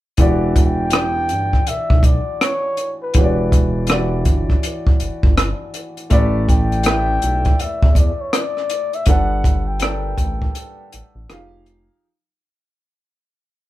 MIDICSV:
0, 0, Header, 1, 5, 480
1, 0, Start_track
1, 0, Key_signature, 1, "minor"
1, 0, Tempo, 740741
1, 116, Time_signature, 4, 2, 24, 8
1, 8873, End_track
2, 0, Start_track
2, 0, Title_t, "Muted trumpet"
2, 0, Program_c, 0, 59
2, 377, Note_on_c, 0, 79, 120
2, 1092, Note_on_c, 0, 76, 95
2, 1101, Note_off_c, 0, 79, 0
2, 1328, Note_on_c, 0, 74, 86
2, 1337, Note_off_c, 0, 76, 0
2, 1562, Note_off_c, 0, 74, 0
2, 1570, Note_on_c, 0, 73, 107
2, 1921, Note_off_c, 0, 73, 0
2, 1957, Note_on_c, 0, 71, 84
2, 2883, Note_off_c, 0, 71, 0
2, 4209, Note_on_c, 0, 79, 108
2, 4933, Note_on_c, 0, 76, 88
2, 4942, Note_off_c, 0, 79, 0
2, 5172, Note_on_c, 0, 74, 76
2, 5181, Note_off_c, 0, 76, 0
2, 5317, Note_on_c, 0, 73, 85
2, 5327, Note_off_c, 0, 74, 0
2, 5413, Note_on_c, 0, 74, 107
2, 5423, Note_off_c, 0, 73, 0
2, 5799, Note_on_c, 0, 76, 93
2, 5809, Note_off_c, 0, 74, 0
2, 5881, Note_off_c, 0, 76, 0
2, 5885, Note_on_c, 0, 78, 99
2, 6267, Note_on_c, 0, 79, 84
2, 6277, Note_off_c, 0, 78, 0
2, 7224, Note_off_c, 0, 79, 0
2, 8873, End_track
3, 0, Start_track
3, 0, Title_t, "Grand piano"
3, 0, Program_c, 1, 0
3, 118, Note_on_c, 1, 52, 81
3, 119, Note_on_c, 1, 64, 74
3, 127, Note_on_c, 1, 66, 74
3, 130, Note_on_c, 1, 67, 74
3, 134, Note_on_c, 1, 74, 80
3, 236, Control_c, 1, 64, 127
3, 548, Note_off_c, 1, 52, 0
3, 549, Note_off_c, 1, 64, 0
3, 553, Note_off_c, 1, 66, 0
3, 554, Note_off_c, 1, 67, 0
3, 556, Note_off_c, 1, 74, 0
3, 597, Note_on_c, 1, 52, 52
3, 598, Note_on_c, 1, 64, 59
3, 604, Note_on_c, 1, 62, 57
3, 610, Note_on_c, 1, 67, 54
3, 613, Note_on_c, 1, 74, 60
3, 1458, Note_off_c, 1, 52, 0
3, 1459, Note_off_c, 1, 64, 0
3, 1462, Note_off_c, 1, 62, 0
3, 1465, Note_off_c, 1, 67, 0
3, 1466, Note_off_c, 1, 74, 0
3, 2039, Note_on_c, 1, 52, 71
3, 2044, Note_on_c, 1, 64, 59
3, 2048, Note_on_c, 1, 66, 60
3, 2052, Note_on_c, 1, 67, 58
3, 2057, Note_on_c, 1, 73, 57
3, 2097, Note_off_c, 1, 73, 0
3, 2099, Note_on_c, 1, 74, 68
3, 2469, Note_off_c, 1, 52, 0
3, 2471, Note_off_c, 1, 64, 0
3, 2473, Note_off_c, 1, 66, 0
3, 2475, Note_off_c, 1, 67, 0
3, 2499, Note_off_c, 1, 74, 0
3, 2517, Note_on_c, 1, 52, 68
3, 2521, Note_on_c, 1, 64, 62
3, 2525, Note_on_c, 1, 66, 67
3, 2530, Note_on_c, 1, 67, 63
3, 2536, Note_on_c, 1, 74, 74
3, 3378, Note_off_c, 1, 52, 0
3, 3380, Note_off_c, 1, 64, 0
3, 3382, Note_off_c, 1, 66, 0
3, 3385, Note_off_c, 1, 67, 0
3, 3388, Note_off_c, 1, 74, 0
3, 3952, Note_on_c, 1, 57, 80
3, 3957, Note_on_c, 1, 64, 63
3, 3961, Note_on_c, 1, 67, 72
3, 3963, Control_c, 1, 64, 0
3, 3966, Note_on_c, 1, 71, 73
3, 3969, Note_on_c, 1, 74, 84
3, 4062, Control_c, 1, 64, 127
3, 4385, Note_off_c, 1, 57, 0
3, 4388, Note_off_c, 1, 64, 0
3, 4389, Note_off_c, 1, 67, 0
3, 4392, Note_off_c, 1, 71, 0
3, 4394, Note_off_c, 1, 74, 0
3, 4436, Note_on_c, 1, 57, 57
3, 4441, Note_on_c, 1, 64, 53
3, 4441, Note_on_c, 1, 67, 56
3, 4447, Note_on_c, 1, 71, 57
3, 4453, Note_on_c, 1, 76, 77
3, 5298, Note_off_c, 1, 57, 0
3, 5300, Note_off_c, 1, 64, 0
3, 5300, Note_off_c, 1, 67, 0
3, 5303, Note_off_c, 1, 71, 0
3, 5306, Note_off_c, 1, 76, 0
3, 5877, Note_on_c, 1, 55, 59
3, 5882, Note_on_c, 1, 62, 62
3, 5885, Note_on_c, 1, 69, 63
3, 5886, Control_c, 1, 64, 0
3, 5892, Note_on_c, 1, 71, 67
3, 5894, Note_on_c, 1, 78, 76
3, 6014, Control_c, 1, 64, 127
3, 6307, Note_off_c, 1, 55, 0
3, 6310, Note_off_c, 1, 62, 0
3, 6312, Note_off_c, 1, 69, 0
3, 6315, Note_off_c, 1, 71, 0
3, 6316, Note_off_c, 1, 78, 0
3, 6358, Note_on_c, 1, 55, 63
3, 6363, Note_on_c, 1, 62, 56
3, 6369, Note_on_c, 1, 69, 61
3, 6375, Note_on_c, 1, 70, 50
3, 6377, Note_on_c, 1, 79, 63
3, 6415, Note_on_c, 1, 71, 57
3, 6416, Note_off_c, 1, 70, 0
3, 7219, Note_off_c, 1, 55, 0
3, 7221, Note_off_c, 1, 62, 0
3, 7224, Note_off_c, 1, 69, 0
3, 7228, Note_off_c, 1, 79, 0
3, 7247, Note_off_c, 1, 71, 0
3, 7317, Note_on_c, 1, 53, 79
3, 7321, Note_on_c, 1, 63, 71
3, 7325, Control_c, 1, 64, 0
3, 7328, Note_on_c, 1, 67, 74
3, 7331, Note_on_c, 1, 68, 80
3, 7335, Note_on_c, 1, 77, 96
3, 7441, Control_c, 1, 64, 127
3, 7748, Note_off_c, 1, 53, 0
3, 7750, Note_off_c, 1, 63, 0
3, 7753, Note_off_c, 1, 67, 0
3, 7755, Note_off_c, 1, 68, 0
3, 7757, Note_off_c, 1, 77, 0
3, 7804, Control_c, 1, 64, 0
3, 8873, End_track
4, 0, Start_track
4, 0, Title_t, "Analog synth bass"
4, 0, Program_c, 2, 38
4, 122, Note_on_c, 2, 28, 99
4, 848, Note_on_c, 2, 31, 93
4, 858, Note_off_c, 2, 28, 0
4, 1036, Note_off_c, 2, 31, 0
4, 1090, Note_on_c, 2, 35, 39
4, 1144, Note_off_c, 2, 35, 0
4, 1238, Note_on_c, 2, 35, 83
4, 1423, Note_off_c, 2, 35, 0
4, 2045, Note_on_c, 2, 28, 106
4, 2762, Note_on_c, 2, 31, 82
4, 2772, Note_off_c, 2, 28, 0
4, 2953, Note_off_c, 2, 31, 0
4, 3250, Note_on_c, 2, 31, 51
4, 3304, Note_off_c, 2, 31, 0
4, 3395, Note_on_c, 2, 31, 87
4, 3582, Note_off_c, 2, 31, 0
4, 3966, Note_on_c, 2, 33, 100
4, 4655, Note_off_c, 2, 33, 0
4, 4688, Note_on_c, 2, 35, 87
4, 4876, Note_off_c, 2, 35, 0
4, 4932, Note_on_c, 2, 40, 41
4, 4985, Note_off_c, 2, 40, 0
4, 5076, Note_on_c, 2, 40, 87
4, 5263, Note_off_c, 2, 40, 0
4, 5880, Note_on_c, 2, 31, 91
4, 6572, Note_off_c, 2, 31, 0
4, 6600, Note_on_c, 2, 33, 84
4, 6791, Note_off_c, 2, 33, 0
4, 7088, Note_on_c, 2, 33, 50
4, 7142, Note_off_c, 2, 33, 0
4, 7226, Note_on_c, 2, 33, 83
4, 7301, Note_off_c, 2, 33, 0
4, 7323, Note_on_c, 2, 29, 101
4, 7706, Note_off_c, 2, 29, 0
4, 8873, End_track
5, 0, Start_track
5, 0, Title_t, "Drums"
5, 112, Note_on_c, 9, 42, 67
5, 117, Note_on_c, 9, 36, 94
5, 177, Note_off_c, 9, 42, 0
5, 182, Note_off_c, 9, 36, 0
5, 361, Note_on_c, 9, 36, 90
5, 362, Note_on_c, 9, 42, 61
5, 425, Note_off_c, 9, 36, 0
5, 427, Note_off_c, 9, 42, 0
5, 586, Note_on_c, 9, 42, 76
5, 605, Note_on_c, 9, 37, 115
5, 651, Note_off_c, 9, 42, 0
5, 670, Note_off_c, 9, 37, 0
5, 835, Note_on_c, 9, 42, 57
5, 900, Note_off_c, 9, 42, 0
5, 993, Note_on_c, 9, 36, 66
5, 994, Note_on_c, 9, 37, 28
5, 1057, Note_off_c, 9, 36, 0
5, 1059, Note_off_c, 9, 37, 0
5, 1080, Note_on_c, 9, 42, 70
5, 1145, Note_off_c, 9, 42, 0
5, 1232, Note_on_c, 9, 36, 96
5, 1297, Note_off_c, 9, 36, 0
5, 1314, Note_on_c, 9, 36, 89
5, 1318, Note_on_c, 9, 42, 66
5, 1379, Note_off_c, 9, 36, 0
5, 1383, Note_off_c, 9, 42, 0
5, 1563, Note_on_c, 9, 37, 108
5, 1565, Note_on_c, 9, 42, 67
5, 1628, Note_off_c, 9, 37, 0
5, 1630, Note_off_c, 9, 42, 0
5, 1796, Note_on_c, 9, 42, 63
5, 1861, Note_off_c, 9, 42, 0
5, 2033, Note_on_c, 9, 42, 80
5, 2040, Note_on_c, 9, 36, 97
5, 2098, Note_off_c, 9, 42, 0
5, 2104, Note_off_c, 9, 36, 0
5, 2283, Note_on_c, 9, 36, 88
5, 2285, Note_on_c, 9, 42, 59
5, 2347, Note_off_c, 9, 36, 0
5, 2350, Note_off_c, 9, 42, 0
5, 2506, Note_on_c, 9, 42, 78
5, 2525, Note_on_c, 9, 37, 114
5, 2571, Note_off_c, 9, 42, 0
5, 2590, Note_off_c, 9, 37, 0
5, 2755, Note_on_c, 9, 42, 63
5, 2757, Note_on_c, 9, 36, 71
5, 2820, Note_off_c, 9, 42, 0
5, 2822, Note_off_c, 9, 36, 0
5, 2914, Note_on_c, 9, 36, 65
5, 2914, Note_on_c, 9, 37, 29
5, 2978, Note_off_c, 9, 37, 0
5, 2979, Note_off_c, 9, 36, 0
5, 3002, Note_on_c, 9, 42, 76
5, 3066, Note_off_c, 9, 42, 0
5, 3153, Note_on_c, 9, 36, 85
5, 3218, Note_off_c, 9, 36, 0
5, 3239, Note_on_c, 9, 42, 60
5, 3304, Note_off_c, 9, 42, 0
5, 3391, Note_on_c, 9, 36, 94
5, 3455, Note_off_c, 9, 36, 0
5, 3483, Note_on_c, 9, 37, 112
5, 3485, Note_on_c, 9, 42, 66
5, 3548, Note_off_c, 9, 37, 0
5, 3550, Note_off_c, 9, 42, 0
5, 3719, Note_on_c, 9, 42, 72
5, 3783, Note_off_c, 9, 42, 0
5, 3870, Note_on_c, 9, 42, 34
5, 3935, Note_off_c, 9, 42, 0
5, 3955, Note_on_c, 9, 42, 67
5, 3960, Note_on_c, 9, 36, 86
5, 4020, Note_off_c, 9, 42, 0
5, 4025, Note_off_c, 9, 36, 0
5, 4203, Note_on_c, 9, 36, 82
5, 4206, Note_on_c, 9, 42, 56
5, 4268, Note_off_c, 9, 36, 0
5, 4271, Note_off_c, 9, 42, 0
5, 4355, Note_on_c, 9, 42, 34
5, 4420, Note_off_c, 9, 42, 0
5, 4429, Note_on_c, 9, 42, 82
5, 4447, Note_on_c, 9, 37, 114
5, 4493, Note_off_c, 9, 42, 0
5, 4512, Note_off_c, 9, 37, 0
5, 4678, Note_on_c, 9, 42, 57
5, 4743, Note_off_c, 9, 42, 0
5, 4826, Note_on_c, 9, 42, 31
5, 4833, Note_on_c, 9, 36, 77
5, 4890, Note_off_c, 9, 42, 0
5, 4898, Note_off_c, 9, 36, 0
5, 4921, Note_on_c, 9, 42, 72
5, 4986, Note_off_c, 9, 42, 0
5, 5070, Note_on_c, 9, 36, 100
5, 5135, Note_off_c, 9, 36, 0
5, 5152, Note_on_c, 9, 36, 83
5, 5157, Note_on_c, 9, 42, 67
5, 5217, Note_off_c, 9, 36, 0
5, 5222, Note_off_c, 9, 42, 0
5, 5398, Note_on_c, 9, 37, 99
5, 5400, Note_on_c, 9, 42, 80
5, 5463, Note_off_c, 9, 37, 0
5, 5464, Note_off_c, 9, 42, 0
5, 5553, Note_on_c, 9, 37, 34
5, 5618, Note_off_c, 9, 37, 0
5, 5635, Note_on_c, 9, 42, 70
5, 5700, Note_off_c, 9, 42, 0
5, 5788, Note_on_c, 9, 42, 33
5, 5853, Note_off_c, 9, 42, 0
5, 5869, Note_on_c, 9, 42, 81
5, 5875, Note_on_c, 9, 36, 106
5, 5933, Note_off_c, 9, 42, 0
5, 5940, Note_off_c, 9, 36, 0
5, 6119, Note_on_c, 9, 36, 93
5, 6124, Note_on_c, 9, 42, 59
5, 6184, Note_off_c, 9, 36, 0
5, 6189, Note_off_c, 9, 42, 0
5, 6348, Note_on_c, 9, 42, 87
5, 6367, Note_on_c, 9, 37, 113
5, 6413, Note_off_c, 9, 42, 0
5, 6431, Note_off_c, 9, 37, 0
5, 6594, Note_on_c, 9, 36, 76
5, 6597, Note_on_c, 9, 42, 61
5, 6659, Note_off_c, 9, 36, 0
5, 6661, Note_off_c, 9, 42, 0
5, 6750, Note_on_c, 9, 36, 72
5, 6815, Note_off_c, 9, 36, 0
5, 6837, Note_on_c, 9, 42, 80
5, 6901, Note_off_c, 9, 42, 0
5, 7079, Note_on_c, 9, 42, 66
5, 7144, Note_off_c, 9, 42, 0
5, 7320, Note_on_c, 9, 37, 107
5, 7322, Note_on_c, 9, 42, 73
5, 7385, Note_off_c, 9, 37, 0
5, 7386, Note_off_c, 9, 42, 0
5, 7556, Note_on_c, 9, 42, 70
5, 7621, Note_off_c, 9, 42, 0
5, 8873, End_track
0, 0, End_of_file